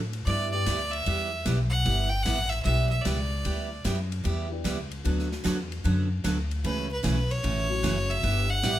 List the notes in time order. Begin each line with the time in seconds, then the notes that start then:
Already playing: A2
0.13 ride
0.26 G2 G3 B3 E4 G4 D5, kick, ride
0.52 G3 B3 D4 E4 G4 D5
0.66 D2 G3 B3 E4 G4, kick, snare, hi-hat pedal, ride
0.91 E5, ride
1.06 E2 G3 B3 E4 G4, kick, ride
1.46 B1 G3 B3 E4 G4, kick, snare, hi-hat pedal, ride
1.70 F#5
1.85 G1 G3 B3 E4 G4, kick, ride
2.09 G5
2.23 A1 G3 B3 E4 G4 F#5, kick, snare, hi-hat pedal, ride
2.50 E5, ride
2.63 B1 G3 B3 D4 E4 G4 E5, kick, ride
2.89 E5
3.02 C#2 G3 B3 E4 G4 D5, kick, snare, hi-hat pedal, ride
3.44 D2 G3 B3 E4 G4, kick, ride
3.84 F#2 G3 B3 E4 G4, kick, snare, hi-hat pedal, ride
4.12 ride
4.24 E2 G3 B3 E4 G4, kick, ride
4.50 G3 B3 D4 E4 G4
4.64 C#2 G3 B3 E4 G4, kick, snare, hi-hat pedal, ride
4.91 ride
5.04 D2 D3 F#3 A3 B3 D4 F#4 A4, kick, ride
5.19 snare
5.32 snare
5.44 E2 D3 F#3 B3 F#4 A4, kick, snare, hi-hat pedal, ride
5.72 ride
5.84 F#2 D3 F#3 B3 F#4 A4, kick, ride
6.24 D2 D3 F#3 B3 F#4 A4, kick, snare, hi-hat pedal, ride
6.51 ride
6.64 C#2 C#3 E3 A3 C#4 F#4 B4, kick, ride
6.92 B4
7.03 B1 C#3 E3 A3 C#4 F#4 B4, kick, snare, hi-hat pedal, ride
7.31 C#5, ride
7.43 A1 C#3 E3 A3 C#4 F#4, kick, ride
7.69 F#3 A3 C#4 E4 F#4
7.83 F#1 C#3 E3 A3 C#4 F#4, kick, snare, hi-hat pedal, ride
8.10 E5, ride
8.22 G1 G3 B3 E4 G4, kick, ride
8.50 F#5
8.63 A1 G3 B3 E4 G4, kick, snare, hi-hat pedal, ride